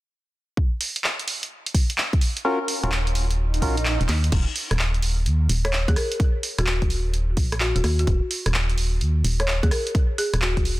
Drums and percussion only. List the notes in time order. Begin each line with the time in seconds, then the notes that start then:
0.57 kick
0.81 open hi-hat
0.96 closed hi-hat
1.04 clap
1.19 closed hi-hat
1.28 open hi-hat
1.43 closed hi-hat
1.66 closed hi-hat
1.74 kick, open hi-hat
1.90 closed hi-hat
1.98 clap
2.13 kick, closed hi-hat
2.21 open hi-hat
2.37 closed hi-hat
2.68 open hi-hat
2.84 closed hi-hat
2.92 clap
3.07 closed hi-hat
3.15 open hi-hat
3.31 closed hi-hat
3.54 closed hi-hat
3.62 kick, open hi-hat
3.77 closed hi-hat
3.85 clap
4.01 closed hi-hat
4.09 clap, open hi-hat
4.24 closed hi-hat
4.32 kick, closed hi-hat, crash
4.56 open hi-hat
4.71 cross-stick, closed hi-hat
4.79 clap
4.94 closed hi-hat
5.02 open hi-hat
5.26 closed hi-hat
5.49 open hi-hat
5.65 cross-stick, closed hi-hat
5.73 clap
5.88 kick, closed hi-hat
5.96 cross-stick, open hi-hat
6.12 closed hi-hat
6.20 kick, closed hi-hat
6.43 open hi-hat
6.58 cross-stick, closed hi-hat
6.67 clap
6.82 kick, closed hi-hat
6.90 open hi-hat
7.14 closed hi-hat
7.37 kick, open hi-hat
7.52 cross-stick, closed hi-hat
7.60 clap
7.76 closed hi-hat
7.84 cross-stick, open hi-hat
7.99 closed hi-hat
8.07 kick, closed hi-hat
8.31 open hi-hat
8.46 cross-stick, closed hi-hat
8.54 clap
8.70 closed hi-hat
8.78 open hi-hat
9.01 closed hi-hat
9.25 open hi-hat
9.40 cross-stick, closed hi-hat
9.48 clap
9.63 kick, closed hi-hat
9.71 cross-stick, open hi-hat
9.87 closed hi-hat
9.95 kick, closed hi-hat
10.18 open hi-hat
10.34 cross-stick, closed hi-hat
10.42 clap
10.57 kick, closed hi-hat
10.65 open hi-hat